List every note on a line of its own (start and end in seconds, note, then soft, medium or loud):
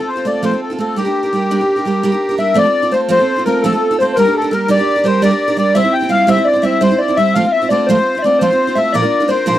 0.00 0.17 C4 soft
0.00 0.16 F4 soft
0.00 0.14 A4 medium
0.08 0.26 C5 medium
0.16 0.25 C4 soft
0.16 0.25 F4 soft
0.16 0.25 A4 medium
0.25 0.41 A3 medium
0.25 0.42 C4 medium
0.25 0.43 F4 medium
0.25 0.43 A4 medium
0.25 0.44 D5 medium
0.43 0.52 F3 medium
0.43 0.52 A3 medium
0.43 0.52 C4 medium
0.43 0.52 F4 medium
0.43 0.50 A4 medium
0.43 0.61 C5 medium
0.51 0.71 C4 soft
0.51 0.70 F4 soft
0.51 0.69 A4 soft
0.62 0.78 A4 medium
0.70 0.79 C4 soft
0.70 0.79 F4 medium
0.70 0.79 A4 medium
0.78 0.96 A3 medium
0.78 0.97 C4 medium
0.78 0.98 F4 medium
0.78 0.98 A4 medium
0.96 1.06 G3 medium
0.96 1.06 D4 medium
0.96 2.35 G4 medium
0.96 1.05 G4 medium
0.96 1.04 A#4 medium
1.05 1.24 D4 soft
1.05 1.23 G4 soft
1.05 1.22 A#4 soft
1.23 1.32 D4 soft
1.23 1.33 G4 soft
1.23 1.32 A#4 medium
1.33 1.50 G3 soft
1.33 1.50 D4 medium
1.33 1.51 G4 medium
1.33 1.51 A#4 medium
1.51 1.59 G3 medium
1.51 1.60 D4 medium
1.51 1.60 G4 medium
1.51 1.58 A#4 medium
1.60 1.77 D4 soft
1.60 1.76 G4 soft
1.60 1.75 A#4 soft
1.76 1.85 D4 soft
1.76 1.86 G4 medium
1.76 1.85 A#4 medium
1.85 2.02 G3 medium
1.85 2.02 D4 medium
1.85 2.03 G4 medium
1.85 2.04 A#4 medium
2.03 2.12 G3 medium
2.03 2.12 D4 medium
2.03 2.12 G4 medium
2.03 2.11 A#4 medium
2.12 2.30 D4 soft
2.12 2.30 G4 medium
2.12 2.28 A#4 medium
2.29 2.37 D4 medium
2.29 2.39 G4 medium
2.29 2.38 A#4 medium
2.38 2.55 G3 medium
2.38 2.55 D4 medium
2.38 2.55 G4 medium
2.38 2.56 A#4 medium
2.38 2.55 E5 medium
2.38 2.58 E5 medium
2.54 2.64 F3 medium
2.54 2.65 A3 medium
2.54 2.65 C4 medium
2.54 2.64 F4 medium
2.54 2.63 A4 medium
2.54 2.90 D5 medium
2.54 2.94 D5 loud
2.64 2.83 C4 soft
2.64 2.82 F4 soft
2.64 2.81 A4 medium
2.82 2.91 C4 soft
2.82 2.92 F4 medium
2.82 2.92 A4 medium
2.92 3.08 A3 medium
2.92 3.08 C4 medium
2.92 3.09 F4 medium
2.92 3.09 A4 medium
2.92 3.09 C5 medium
2.92 3.01 C5 medium
3.09 3.18 F3 medium
3.09 3.18 A3 medium
3.09 3.18 C4 medium
3.09 3.19 F4 medium
3.09 3.18 A4 loud
3.09 3.43 C5 medium
3.09 3.43 C5 loud
3.19 3.38 C4 soft
3.19 3.37 F4 soft
3.19 3.35 A4 medium
3.36 3.46 C4 soft
3.36 3.46 F4 medium
3.36 3.45 A4 medium
3.46 3.63 A3 medium
3.46 3.63 C4 medium
3.46 3.64 F4 medium
3.46 3.65 A4 medium
3.46 3.62 A#4 medium
3.46 3.64 A#4 medium
3.62 3.72 F3 medium
3.62 3.73 A3 medium
3.62 3.73 C4 medium
3.62 3.73 F4 medium
3.62 4.00 A4 medium
3.62 3.96 A4 medium
3.62 3.71 A4 loud
3.73 3.91 C4 medium
3.73 3.91 F4 medium
3.73 3.90 A4 medium
3.91 4.00 C4 soft
3.91 4.00 F4 medium
3.91 3.99 A4 medium
3.99 4.16 A3 medium
3.99 4.17 C4 medium
3.99 4.18 F4 medium
3.99 4.18 A4 medium
3.99 4.15 C5 medium
3.99 4.11 C5 loud
4.13 4.25 G3 medium
4.13 4.33 A#4 medium
4.13 4.17 C5 medium
4.18 4.26 D4 medium
4.18 4.26 G4 medium
4.18 4.36 A#4 loud
4.18 4.24 A#4 medium
4.25 4.43 D4 soft
4.25 4.43 G4 medium
4.25 4.41 A#4 medium
4.34 4.54 A4 medium
4.34 4.53 A4 medium
4.42 4.52 D4 soft
4.42 4.52 G4 medium
4.42 4.51 A#4 medium
4.51 4.67 G3 medium
4.51 4.68 D4 medium
4.51 4.69 G4 medium
4.51 4.69 A#4 medium
4.68 4.78 G3 medium
4.68 4.78 D4 medium
4.68 4.78 G4 medium
4.68 4.76 A#4 medium
4.68 5.06 D5 loud
4.68 5.03 D5 medium
4.77 4.97 D4 soft
4.77 4.96 G4 medium
4.77 4.95 A#4 medium
4.96 5.04 D4 soft
4.96 5.04 G4 soft
4.96 5.05 A#4 medium
5.04 5.21 G3 medium
5.04 5.21 D4 medium
5.04 5.22 G4 medium
5.04 5.23 A#4 medium
5.04 5.21 C5 medium
5.04 5.22 C5 loud
5.22 5.31 G3 medium
5.22 5.31 D4 medium
5.22 5.31 G4 medium
5.22 5.30 A#4 medium
5.22 5.55 D5 medium
5.22 5.57 D5 loud
5.31 5.48 D4 soft
5.31 5.47 G4 medium
5.31 5.47 A#4 medium
5.48 5.56 D4 medium
5.48 5.58 G4 medium
5.48 5.57 A#4 medium
5.57 5.74 G3 medium
5.57 5.75 D4 medium
5.57 5.76 G4 medium
5.57 5.76 A#4 medium
5.57 5.76 D5 loud
5.75 5.84 G3 medium
5.75 5.84 C4 medium
5.75 5.83 E4 medium
5.75 5.81 C5 medium
5.75 5.93 E5 loud
5.75 5.94 E5 loud
5.83 6.02 C4 soft
5.83 6.01 E4 medium
5.83 6.00 C5 medium
5.93 6.09 G5 medium
5.93 6.11 G5 loud
6.01 6.08 C4 medium
6.01 6.09 E4 medium
6.01 6.09 C5 medium
6.09 6.26 G3 medium
6.09 6.27 C4 medium
6.09 6.27 E4 medium
6.09 6.28 C5 medium
6.09 6.27 F5 loud
6.09 6.29 F5 loud
6.27 6.36 G3 medium
6.27 6.37 C4 medium
6.27 6.37 E4 loud
6.27 6.35 C5 loud
6.27 6.44 E5 loud
6.27 6.47 E5 loud
6.36 6.55 C4 soft
6.36 6.54 E4 medium
6.36 6.52 C5 medium
6.45 6.64 D5 medium
6.45 6.64 D5 loud
6.53 6.62 C4 soft
6.53 6.62 E4 medium
6.53 6.63 C5 medium
6.62 6.80 G3 medium
6.62 6.80 C4 medium
6.62 6.81 E4 medium
6.62 6.81 C5 medium
6.62 6.83 E5 medium
6.62 6.82 E5 loud
6.81 6.90 G3 medium
6.81 6.90 C4 medium
6.81 6.90 E4 medium
6.81 6.98 C5 medium
6.81 6.90 C5 medium
6.81 7.00 C5 loud
6.91 7.09 C4 soft
6.91 7.08 E4 soft
6.91 7.07 C5 medium
6.99 7.15 D5 medium
6.99 7.18 D5 loud
7.08 7.18 C4 medium
7.08 7.17 E4 medium
7.08 7.17 C5 medium
7.17 7.35 G3 medium
7.17 7.35 C4 medium
7.17 7.36 E4 medium
7.17 7.36 C5 medium
7.17 7.33 E5 medium
7.17 7.35 E5 loud
7.34 7.44 F3 medium
7.34 7.44 A3 medium
7.34 7.44 C4 medium
7.34 7.44 F4 medium
7.34 7.43 C5 medium
7.34 7.53 F5 loud
7.34 7.46 F5 loud
7.44 7.62 C4 soft
7.44 7.62 F4 soft
7.44 7.61 C5 medium
7.44 7.52 F5 medium
7.52 7.68 E5 medium
7.52 7.69 E5 loud
7.62 7.70 C4 soft
7.62 7.71 F4 medium
7.62 7.70 C5 medium
7.69 7.88 A3 medium
7.69 7.88 C4 medium
7.69 7.88 F4 medium
7.69 7.89 C5 medium
7.69 7.86 D5 medium
7.69 7.88 D5 loud
7.87 7.97 F3 medium
7.87 7.97 A3 medium
7.87 7.97 C4 medium
7.87 7.97 F4 loud
7.87 8.03 C5 medium
7.87 8.24 C5 loud
7.87 7.96 C5 loud
7.97 8.16 C4 soft
7.97 8.15 F4 medium
7.97 8.14 C5 medium
8.04 8.17 C5 medium
8.15 8.24 C4 soft
8.15 8.24 F4 soft
8.15 8.23 C5 medium
8.15 8.24 E5 medium
8.22 8.41 A3 medium
8.22 8.41 C4 medium
8.22 8.41 F4 medium
8.22 8.38 D5 medium
8.22 8.42 D5 medium
8.27 8.41 C5 medium
8.39 8.49 F3 medium
8.39 8.50 A3 medium
8.39 8.50 C4 medium
8.39 8.50 F4 medium
8.39 8.72 C5 medium
8.39 8.77 C5 loud
8.39 8.50 C5 medium
8.51 8.69 C4 soft
8.51 8.67 F4 medium
8.51 8.66 C5 medium
8.67 8.75 C4 soft
8.67 8.76 F4 medium
8.67 8.76 C5 medium
8.75 8.93 A3 medium
8.75 8.94 C4 medium
8.75 8.94 F4 medium
8.75 8.94 C5 medium
8.75 8.94 E5 medium
8.75 8.95 E5 loud
8.93 9.02 A#2 medium
8.93 9.03 F3 medium
8.93 9.03 A#3 medium
8.93 9.03 D4 medium
8.93 9.02 F4 medium
8.93 9.01 A#4 loud
8.93 9.28 D5 loud
8.93 9.30 D5 loud
9.02 9.21 A#3 soft
9.02 9.20 D4 medium
9.02 9.19 F4 medium
9.02 9.19 A#4 medium
9.20 9.27 A#3 soft
9.20 9.28 D4 medium
9.20 9.29 F4 medium
9.20 9.29 A#4 medium
9.28 9.46 A#3 medium
9.28 9.46 D4 medium
9.28 9.47 F4 medium
9.28 9.46 A#4 medium
9.28 9.45 C5 medium
9.28 9.46 C5 medium
9.46 9.55 A#2 medium
9.46 9.55 F3 medium
9.46 9.55 A#3 medium
9.46 9.55 D4 medium
9.46 9.54 F4 medium
9.46 9.53 A#4 medium
9.46 9.59 C5 medium
9.46 9.59 C5 loud
9.55 9.59 F4 medium
9.55 9.59 A#4 medium